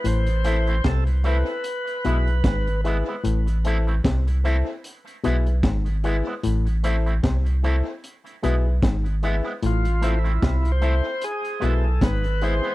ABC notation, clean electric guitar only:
X:1
M:4/4
L:1/16
Q:"Swing 16ths" 1/4=75
K:Am
V:1 name="Clean electric guitar"
z2 [A,CE] [A,CE] z2 [A,CE] z3 [^G,B,E] z3 [G,B,E] [G,B,E] | z2 [A,CE] [A,CE] z2 [A,CE] z3 [^G,B,E] z3 [G,B,E] [G,B,E] | z2 [A,CE] [A,CE] z2 [A,CE] z3 [^G,B,E] z3 [G,B,E] [G,B,E] | z2 [A,CE] [A,CE] z2 [A,CE] z3 [^G,B,E] z3 [G,B,E] [G,B,E] |]